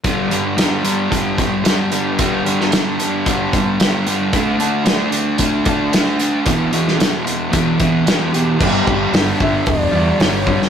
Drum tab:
CC |----------------|----------------|----------------|----------------|
HH |x-x-x-x-x-x-x-x-|x-x-x-x-x-x-x-x-|x-x-x-x-x-x-x-x-|x-x-x-x-x-x-x-x-|
SD |----o-------o---|---oo-------o---|----o-------o---|---oo-------o---|
BD |o-------o-o-----|o-------o-o-----|o-------o-o-----|o-------o-o-----|

CC |x---------------|
HH |----o---o---o---|
SD |----o-------o--o|
BD |o-o---o-o-----o-|